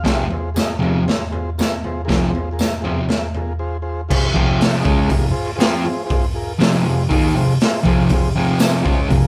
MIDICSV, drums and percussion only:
0, 0, Header, 1, 2, 480
1, 0, Start_track
1, 0, Key_signature, -4, "minor"
1, 0, Tempo, 502092
1, 53, Time_signature, 4, 2, 24, 8
1, 8862, End_track
2, 0, Start_track
2, 0, Title_t, "Drums"
2, 44, Note_on_c, 9, 43, 89
2, 49, Note_on_c, 9, 36, 111
2, 58, Note_on_c, 9, 38, 117
2, 140, Note_off_c, 9, 43, 0
2, 145, Note_off_c, 9, 36, 0
2, 153, Note_off_c, 9, 38, 0
2, 291, Note_on_c, 9, 43, 67
2, 387, Note_off_c, 9, 43, 0
2, 536, Note_on_c, 9, 43, 83
2, 536, Note_on_c, 9, 54, 88
2, 549, Note_on_c, 9, 38, 110
2, 631, Note_off_c, 9, 43, 0
2, 632, Note_off_c, 9, 54, 0
2, 645, Note_off_c, 9, 38, 0
2, 790, Note_on_c, 9, 43, 62
2, 886, Note_off_c, 9, 43, 0
2, 1032, Note_on_c, 9, 43, 81
2, 1046, Note_on_c, 9, 38, 109
2, 1128, Note_off_c, 9, 43, 0
2, 1141, Note_off_c, 9, 38, 0
2, 1267, Note_on_c, 9, 43, 62
2, 1362, Note_off_c, 9, 43, 0
2, 1518, Note_on_c, 9, 54, 93
2, 1523, Note_on_c, 9, 43, 78
2, 1537, Note_on_c, 9, 38, 111
2, 1613, Note_off_c, 9, 54, 0
2, 1619, Note_off_c, 9, 43, 0
2, 1632, Note_off_c, 9, 38, 0
2, 1761, Note_on_c, 9, 43, 58
2, 1857, Note_off_c, 9, 43, 0
2, 1997, Note_on_c, 9, 43, 80
2, 2001, Note_on_c, 9, 36, 111
2, 2011, Note_on_c, 9, 38, 111
2, 2093, Note_off_c, 9, 43, 0
2, 2096, Note_off_c, 9, 36, 0
2, 2106, Note_off_c, 9, 38, 0
2, 2246, Note_on_c, 9, 43, 64
2, 2341, Note_off_c, 9, 43, 0
2, 2476, Note_on_c, 9, 54, 84
2, 2479, Note_on_c, 9, 43, 82
2, 2492, Note_on_c, 9, 38, 109
2, 2572, Note_off_c, 9, 54, 0
2, 2575, Note_off_c, 9, 43, 0
2, 2588, Note_off_c, 9, 38, 0
2, 2724, Note_on_c, 9, 43, 64
2, 2819, Note_off_c, 9, 43, 0
2, 2951, Note_on_c, 9, 43, 80
2, 2965, Note_on_c, 9, 38, 106
2, 3047, Note_off_c, 9, 43, 0
2, 3060, Note_off_c, 9, 38, 0
2, 3198, Note_on_c, 9, 43, 70
2, 3294, Note_off_c, 9, 43, 0
2, 3925, Note_on_c, 9, 36, 104
2, 3926, Note_on_c, 9, 49, 120
2, 4020, Note_off_c, 9, 36, 0
2, 4022, Note_off_c, 9, 49, 0
2, 4164, Note_on_c, 9, 36, 105
2, 4259, Note_off_c, 9, 36, 0
2, 4405, Note_on_c, 9, 46, 64
2, 4419, Note_on_c, 9, 38, 117
2, 4501, Note_off_c, 9, 46, 0
2, 4514, Note_off_c, 9, 38, 0
2, 4640, Note_on_c, 9, 36, 115
2, 4736, Note_off_c, 9, 36, 0
2, 4872, Note_on_c, 9, 46, 65
2, 4877, Note_on_c, 9, 36, 97
2, 4967, Note_off_c, 9, 46, 0
2, 4973, Note_off_c, 9, 36, 0
2, 5352, Note_on_c, 9, 46, 63
2, 5365, Note_on_c, 9, 38, 124
2, 5448, Note_off_c, 9, 46, 0
2, 5461, Note_off_c, 9, 38, 0
2, 5831, Note_on_c, 9, 46, 70
2, 5835, Note_on_c, 9, 36, 114
2, 5926, Note_off_c, 9, 46, 0
2, 5931, Note_off_c, 9, 36, 0
2, 6312, Note_on_c, 9, 46, 71
2, 6325, Note_on_c, 9, 38, 120
2, 6407, Note_off_c, 9, 46, 0
2, 6421, Note_off_c, 9, 38, 0
2, 6792, Note_on_c, 9, 46, 70
2, 6795, Note_on_c, 9, 36, 110
2, 6887, Note_off_c, 9, 46, 0
2, 6891, Note_off_c, 9, 36, 0
2, 7269, Note_on_c, 9, 46, 76
2, 7283, Note_on_c, 9, 38, 123
2, 7365, Note_off_c, 9, 46, 0
2, 7378, Note_off_c, 9, 38, 0
2, 7510, Note_on_c, 9, 36, 110
2, 7605, Note_off_c, 9, 36, 0
2, 7736, Note_on_c, 9, 46, 67
2, 7748, Note_on_c, 9, 36, 106
2, 7831, Note_off_c, 9, 46, 0
2, 7844, Note_off_c, 9, 36, 0
2, 8211, Note_on_c, 9, 46, 66
2, 8220, Note_on_c, 9, 54, 89
2, 8225, Note_on_c, 9, 38, 122
2, 8307, Note_off_c, 9, 46, 0
2, 8316, Note_off_c, 9, 54, 0
2, 8320, Note_off_c, 9, 38, 0
2, 8466, Note_on_c, 9, 36, 114
2, 8561, Note_off_c, 9, 36, 0
2, 8703, Note_on_c, 9, 46, 61
2, 8705, Note_on_c, 9, 36, 102
2, 8799, Note_off_c, 9, 46, 0
2, 8800, Note_off_c, 9, 36, 0
2, 8862, End_track
0, 0, End_of_file